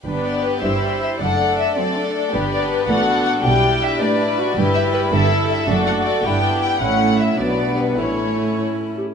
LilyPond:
<<
  \new Staff \with { instrumentName = "Violin section" } { \time 6/8 \key g \major \tempo 4. = 106 r8 d''8 b'8 e''4 e''8 | fis''4 e''8 d''4. | r8 d''8 b'8 fis''4 fis''8 | g''4 e''8 d''4. |
\key a \mixolydian r8 e''8 b'8 e''4 e''8 | r8 fis''8 d''8 g''4 g''8 | fis''4 e''8 d''4 b'8 | cis''4. r4. | }
  \new Staff \with { instrumentName = "Violin section" } { \time 6/8 \key g \major << { b'4. c''4. | d''4. d''4. | b'4. a'4. | g'4. b'4. |
\key a \mixolydian b'4. a'4. | a'4. g'4. | e'4. d'4. | e'2~ e'8 r8 | } \\ { g'2. | a'4. a'4. | g'4. fis'4. | e'4. d'8 e'8 fis'8 |
g'4. e'4. | fis'4. e'4. | e'4. b4. | e'2~ e'8 r8 | } >> }
  \new Staff \with { instrumentName = "Clarinet" } { \time 6/8 \key g \major r2. | r2. | r2. | r2. |
\key a \mixolydian r2. | r2. | r2. | r4. e'4 g'8 | }
  \new Staff \with { instrumentName = "Viola section" } { \time 6/8 \key g \major << { d'4. e'4. | d'4. c'8 d'8 d'8~ | d'2.~ | d'2. |
\key a \mixolydian e'2. | d'4. d'4. | cis'4. b4. | cis'2~ cis'8 r8 | } \\ { b4. g4. | a4. a4. | b2. | g2. |
g2. | a4. b4. | a4. fis8. g8. | a2~ a8 r8 | } >> }
  \new Staff \with { instrumentName = "Cello section" } { \clef bass \time 6/8 \key g \major g,4. g,4. | fis,4. fis4. | g,4. a,4. | b,4. a,4. |
\key a \mixolydian g,4. g,4. | fis,4. g,4. | a,4. b,4. | a,2~ a,8 r8 | }
  \new Staff \with { instrumentName = "Double bass section" } { \clef bass \time 6/8 \key g \major g,,4 r8 g,,4 r8 | fis,,4 r2 | g,,4 r8 a,,4 r8 | b,,4 r2 |
\key a \mixolydian g,,4 r8 g,,4 r8 | fis,,4 r8 g,,4 r8 | a,,4 r8 b,,4 r8 | a,,4 r2 | }
>>